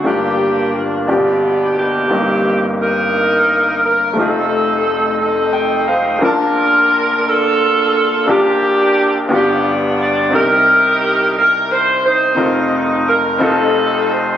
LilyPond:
<<
  \new Staff \with { instrumentName = "Saxophone section" } { \time 6/8 \key bes \major \tempo 4. = 58 << { g'4 f'8 g'4 g'8~ | g'4 bes'4. bes'8 | a'4. a'4 c''8 | bes'4. a'4. |
g'4. g'8 r8 d''8 | bes'4. bes'8 c''8 c''8~ | c''8 r8 bes'8 a'4 c''8 | } \\ { <bes d'>4. <b d'>4 <bes ees'>8~ | <bes ees'>4 ees'4. r8 | <c' ees'>4. <c' ees'>4. | <d' f'>4. <d' f'>4. |
d'4. <b d'>4. | <ees' g'>4. r4 ees'8~ | ees'4 r8 <c' ees'>4. | } >> }
  \new Staff \with { instrumentName = "Grand piano" } { \time 6/8 \key bes \major << { r2. | r2. | r2 g''8 f''8 | r2. |
r2. | r2. | r2. | } \\ { <g,, g, a bes d' f' g'>4. <g,, g, b, bes f' g' d''>4. | <g,, g, bes c' ees' g'>2. | <f,, f, a c' ees' f'>2. | <bes,, bes, bes d' f' a''>2. |
<bes,, bes, bes d' f' g'>4. <g,, g, b d' f' ges' g'>4. | <c, c c' ees' g' bes'>2. | <f,, f, c' ees' f' bes'>4. <f,, f, c' ees' f' a'>4. | } >> }
>>